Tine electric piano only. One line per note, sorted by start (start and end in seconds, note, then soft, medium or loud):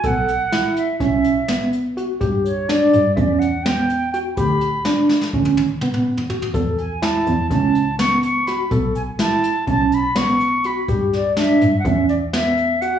0.04 0.35 A4 medium
0.52 0.83 E4 medium
1.00 1.31 C#4 medium
1.49 1.79 B3 medium
1.97 2.12 F#4 medium
2.21 2.51 G4 medium
2.69 3.00 D4 medium
3.18 3.48 C#4 medium
3.66 3.96 B3 medium
4.14 4.29 F#4 medium
4.38 4.68 G4 medium
4.85 5.16 D4 medium
5.34 5.65 C#4 medium
5.83 6.13 B3 medium
6.30 6.45 F#4 medium
6.54 6.85 A4 medium
7.02 7.33 E4 medium
7.52 7.82 C#4 medium
7.99 8.30 B3 medium
8.48 8.63 F#4 medium
8.72 9.02 A4 medium
9.20 9.51 E4 medium
9.68 9.98 C#4 medium
10.16 10.47 B3 medium
10.65 10.80 F#4 medium
10.89 11.20 G4 medium
11.37 11.68 D4 medium
11.86 12.16 C#4 medium
12.34 12.64 B3 medium
12.82 12.97 F#4 medium